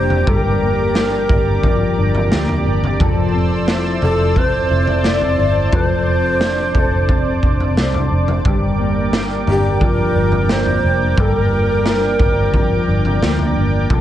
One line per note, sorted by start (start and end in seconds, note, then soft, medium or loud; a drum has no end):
0.00 0.25 F1 medium
0.00 0.26 G2 medium
0.00 1.64 F3 medium
0.00 0.61 A#3 soft
0.00 0.95 D4 soft
0.00 0.27 G4 medium
0.00 2.95 G4 medium
0.00 0.30 C5 medium
0.00 13.86 D5 medium
0.00 2.95 A#5 medium
0.00 2.95 D6 medium
0.10 floor tom medium
0.27 1.25 G1 loud
0.27 3.00 G2 medium
0.27 1.28 G4 medium
0.27 2.32 A#4 medium
0.27 kick loud
0.27 floor tom loud
0.62 2.31 A#3 soft
0.95 1.97 D4 medium
0.95 snare medium
1.29 1.94 G1 medium
1.29 3.00 G4 medium
1.29 kick medium
1.29 floor tom medium
1.63 2.99 F3 medium
1.63 kick medium
1.63 floor tom medium
1.98 2.30 G1 medium
1.98 2.65 D4 medium
2.15 floor tom medium
2.32 2.64 D2 medium
2.32 3.07 A#3 medium
2.32 snare medium
2.49 floor tom medium
2.66 2.98 G1 medium
2.66 3.06 D4 soft
2.84 floor tom medium
2.99 3.98 F1 medium
2.99 5.71 F3 medium
2.99 4.02 A4 medium
2.99 8.41 C5 medium
2.99 8.41 A5 medium
2.99 5.69 E6 medium
2.99 kick loud
2.99 floor tom loud
3.34 4.36 C4 soft
3.68 4.69 E4 medium
3.68 snare medium
4.02 4.67 F1 medium
4.02 5.72 A4 medium
4.02 4.39 A4 medium
4.02 floor tom medium
4.36 5.03 C4 medium
4.36 5.08 C5 medium
4.36 kick medium
4.36 floor tom medium
4.70 5.35 F1 medium
4.70 5.36 E4 medium
4.87 floor tom soft
5.04 6.07 C4 medium
5.04 5.76 D5 medium
5.04 snare medium
5.21 floor tom medium
5.38 5.71 G1 medium
5.38 5.79 E4 medium
5.72 6.71 F1 medium
5.72 8.48 F3 medium
5.72 6.74 A4 medium
5.72 5.85 B4 medium
5.72 13.87 D6 medium
5.72 kick loud
5.72 floor tom medium
5.85 7.78 C5 medium
6.07 7.08 C4 soft
6.41 7.43 D4 medium
6.41 snare medium
6.75 7.39 F1 medium
6.75 8.45 A4 medium
6.75 kick medium
6.75 floor tom medium
7.09 7.75 C4 medium
7.09 kick medium
7.09 floor tom medium
7.43 7.75 F1 medium
7.43 8.11 D4 medium
7.43 kick medium
7.60 floor tom soft
7.76 8.09 C2 medium
7.76 8.52 C4 soft
7.76 snare medium
7.94 floor tom medium
8.11 8.43 F1 medium
8.11 9.12 D4 soft
8.28 floor tom medium
8.45 9.43 G1 medium
8.45 11.16 G2 medium
8.45 9.64 G4 soft
8.45 9.46 G4 medium
8.45 13.86 A#4 medium
8.45 13.86 G5 medium
8.45 kick loud
8.45 floor tom loud
8.68 9.84 A#4 soft
8.78 10.48 A#3 soft
9.13 10.14 D4 medium
9.13 snare loud
9.47 10.12 G1 medium
9.47 11.17 G4 medium
9.47 9.83 G4 medium
9.47 floor tom medium
9.79 12.53 F3 medium
9.79 10.99 F4 medium
9.79 10.53 A#4 medium
9.79 kick medium
9.79 floor tom medium
10.15 10.80 G1 medium
10.15 10.83 D4 medium
10.32 floor tom soft
10.49 11.50 A#3 medium
10.49 11.21 C5 medium
10.49 snare medium
10.66 floor tom medium
10.84 11.16 F1 medium
10.84 11.84 D4 soft
11.17 12.16 G1 loud
11.17 13.90 G2 medium
11.17 12.18 G4 medium
11.17 11.38 A4 medium
11.17 kick loud
11.17 floor tom loud
11.38 13.23 A#4 medium
11.51 13.21 A#3 soft
11.51 12.70 F4 soft
11.86 12.87 D4 medium
11.86 snare loud
11.95 13.09 C5 soft
12.19 12.85 G1 medium
12.19 13.90 G4 medium
12.19 kick medium
12.19 floor tom medium
12.53 13.90 F3 medium
12.53 kick medium
12.53 floor tom medium
12.88 13.21 G1 medium
12.88 13.55 D4 medium
13.05 floor tom soft
13.22 13.55 D2 medium
13.22 13.97 A#3 medium
13.22 snare medium
13.39 floor tom medium
13.56 13.89 G1 medium
13.56 13.97 D4 medium
13.90 14.01 F1 loud
13.90 14.01 F3 medium
13.90 14.01 A4 medium
13.90 14.01 E5 medium
13.90 14.01 A5 medium
13.90 14.01 C6 medium
13.90 kick loud
13.90 floor tom loud